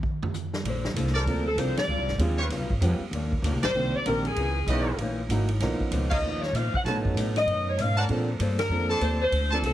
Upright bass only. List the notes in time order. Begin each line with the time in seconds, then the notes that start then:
0.63 A#1
0.94 C2
1.25 D2
1.55 C2
1.74 muted upright bass stroke
1.87 D2
1.97 C2
2.08 G#1
2.18 D#2
2.49 C#2
2.60 B1
2.70 G#1
2.81 F2
2.99 muted upright bass stroke
3.11 D#2
3.42 D2
3.52 C2
3.63 A#1
3.74 C2
3.94 muted upright bass stroke
4.05 A#1
4.36 C#2
4.66 B1
4.98 A#1
5.29 G#1
5.60 B1
5.80 muted upright bass stroke
5.91 C#2
6.21 D#2
6.52 A#2
6.74 muted upright bass stroke
6.84 B2
6.94 A2
7.04 F#2
7.14 A2
7.46 F#2
7.77 G#2
8.09 A#2
8.39 G2
8.69 F2
9.00 D#2
9.31 D2
9.62 C2